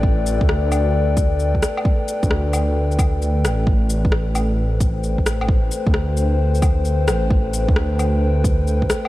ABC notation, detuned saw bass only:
X:1
M:4/4
L:1/16
Q:"Swing 16ths" 1/4=132
K:Am
V:1 name="Detuned saw bass" clef=bass
A,,,3 D,,8- D,,3 z2 | z3 D,,8- D,,3 A,,,2 | A,,,12- A,,, A,,,3- | A,,,2 z D,,8- D,,3 A,,,2- |
A,,,3 D,,8- D,,3 z2 |]